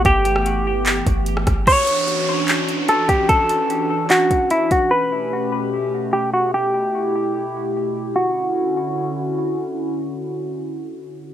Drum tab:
HH |x-x-x---x-x-x-x-|x-x-x---x-x-x-x-|x-x-x---x-x-x-x-|----------------|
CP |--------x-------|--------x-------|--------x-------|----------------|
SD |---r---------rr-|----------------|----------------|----------------|
BD |o---------o---o-|o-------------o-|o---------o---o-|----------------|

HH |----------------|----------------|----------------|
CP |----------------|----------------|----------------|
SD |----------------|----------------|----------------|
BD |----------------|----------------|----------------|